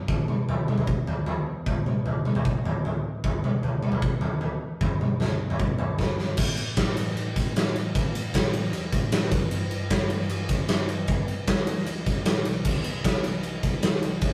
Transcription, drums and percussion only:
0.08 kick, floor tom
0.28 mid tom
0.49 floor tom
0.68 mid tom
0.78 floor tom
0.87 kick
1.07 floor tom
1.26 floor tom
1.66 kick, floor tom
1.86 mid tom
2.06 floor tom
2.25 mid tom
2.35 floor tom
2.45 kick
2.65 floor tom
2.85 floor tom
3.24 kick, floor tom
3.44 mid tom
3.63 floor tom
3.82 mid tom
3.92 floor tom
4.02 kick
4.21 floor tom
4.41 floor tom
4.81 kick, floor tom
5.01 mid tom
5.20 snare, floor tom
5.50 floor tom
5.59 kick, mid tom
5.79 floor tom
5.98 kick, snare, floor tom
6.18 snare
6.37 kick, crash
6.57 ride
6.77 kick, snare, ride
6.97 ride
7.08 snare
7.17 ride
7.36 kick, ride
7.56 snare, ride
7.76 ride
7.95 kick, ride
8.15 ride
8.34 kick, snare, ride
8.53 ride
8.64 snare
8.73 ride
8.92 kick, ride
9.12 snare, ride
9.31 kick, ride
9.51 ride
9.71 ride
9.90 kick, snare, ride
10.10 ride
10.21 snare
10.29 ride
10.49 kick, snare, ride
10.68 snare, ride
10.89 ride
11.07 kick, ride
11.28 ride
11.47 kick, snare, ride
11.67 ride
11.78 snare
11.86 ride
12.06 kick, snare, ride
12.25 snare, ride
12.45 ride
12.65 kick, crash
12.84 ride
13.04 kick, snare, ride
13.24 ride
13.43 ride
13.63 kick, snare, ride
13.83 snare, ride
13.93 snare
14.03 ride
14.21 kick, ride

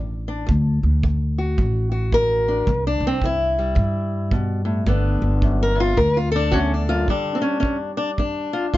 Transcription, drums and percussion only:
0.49 kick
1.03 kick
1.58 kick
2.12 kick
2.67 kick
3.22 kick
3.76 kick
4.31 kick
4.87 kick
5.42 kick
5.97 kick
6.52 kick
7.08 kick
7.63 kick
8.18 kick
8.74 kick

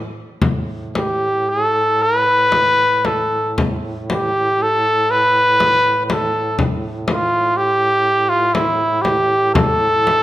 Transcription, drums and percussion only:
0.42 frame drum
0.95 frame drum
2.52 frame drum
3.05 frame drum
3.58 frame drum
4.10 frame drum
5.60 frame drum
6.10 frame drum
6.59 frame drum
7.08 frame drum
8.55 frame drum
9.05 frame drum
9.55 frame drum
10.07 frame drum

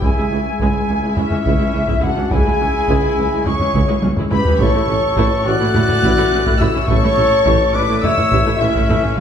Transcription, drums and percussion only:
0.02 taiko
0.59 taiko
1.17 taiko low-mid
1.31 taiko low-mid
1.46 taiko
1.88 taiko
2.03 taiko low-mid
2.31 taiko
2.88 taiko
3.46 taiko low-mid
3.59 taiko low-mid
3.74 taiko
4.02 taiko high
4.17 taiko low-mid
4.31 taiko low-mid
4.45 taiko low
4.59 taiko
5.17 taiko
5.74 taiko low-mid
5.88 taiko low-mid
6.03 taiko
6.47 taiko
6.61 taiko low-mid
6.88 taiko
7.46 taiko
8.03 taiko low-mid
8.17 taiko low-mid
8.31 taiko
8.75 taiko
8.90 taiko low-mid

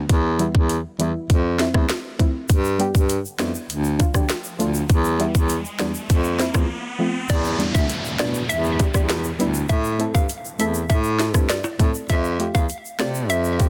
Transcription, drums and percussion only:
0.09 kick, closed hi-hat
0.39 closed hi-hat
0.55 kick
0.69 closed hi-hat
1.00 closed hi-hat
1.30 kick, closed hi-hat
1.59 snare, closed hi-hat
1.74 kick, cross-stick
1.89 cross-stick, snare, closed hi-hat
2.19 kick, closed hi-hat
2.49 kick, closed hi-hat, shaker
2.64 shaker
2.80 closed hi-hat
2.95 kick, shaker
3.09 closed hi-hat, shaker
3.25 shaker
3.39 cross-stick, snare, closed hi-hat, shaker
3.55 shaker
3.70 closed hi-hat, shaker
3.84 shaker
4.00 kick, closed hi-hat, shaker
4.14 kick, cross-stick, shaker
4.29 cross-stick, snare, closed hi-hat, shaker
4.44 shaker
4.60 closed hi-hat, shaker
4.74 shaker
4.89 kick, closed hi-hat, shaker
5.04 shaker
5.20 closed hi-hat
5.35 kick, shaker
5.49 closed hi-hat, shaker
5.65 shaker
5.79 cross-stick, snare, closed hi-hat, shaker
5.95 shaker
6.10 kick, closed hi-hat, shaker
6.24 shaker
6.39 snare, closed hi-hat, shaker
6.54 kick, cross-stick, high timbale, shaker
7.29 kick, closed hi-hat, shaker
7.44 shaker
7.60 closed hi-hat
7.75 kick, shaker
7.89 closed hi-hat, shaker
8.05 shaker
8.19 cross-stick, snare, closed hi-hat, shaker
8.34 shaker
8.50 closed hi-hat, shaker
8.64 shaker
8.79 kick, closed hi-hat, shaker
8.94 kick, cross-stick, shaker
9.09 cross-stick, snare, closed hi-hat, shaker
9.24 shaker
9.40 closed hi-hat, shaker
9.54 shaker
9.69 kick, closed hi-hat, shaker
9.84 shaker
10.00 closed hi-hat
10.15 kick, shaker
10.29 closed hi-hat, shaker
10.45 shaker
10.59 closed hi-hat, shaker
10.74 shaker
10.90 kick, closed hi-hat, shaker
11.04 shaker
11.19 snare, closed hi-hat, shaker
11.34 kick, cross-stick, shaker
11.49 cross-stick, snare, closed hi-hat, shaker
11.64 high timbale, shaker
11.79 kick, closed hi-hat, shaker
11.94 shaker
12.09 kick, closed hi-hat, shaker
12.24 shaker
12.40 closed hi-hat
12.55 kick, shaker
12.69 closed hi-hat, shaker
12.85 shaker
13.00 cross-stick, snare, closed hi-hat, shaker
13.15 shaker
13.30 closed hi-hat, shaker
13.44 shaker
13.60 kick, closed hi-hat, shaker

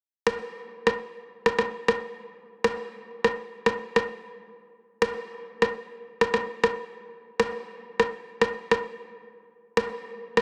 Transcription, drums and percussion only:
0.27 cross-stick
0.87 cross-stick
1.46 cross-stick
1.59 cross-stick
1.88 cross-stick
2.64 cross-stick
3.24 cross-stick
3.66 cross-stick
3.96 cross-stick
5.02 cross-stick
5.62 cross-stick
6.21 cross-stick
6.34 cross-stick
6.64 cross-stick
7.40 cross-stick
8.00 cross-stick
8.41 cross-stick
8.71 cross-stick
9.77 cross-stick
10.37 cross-stick

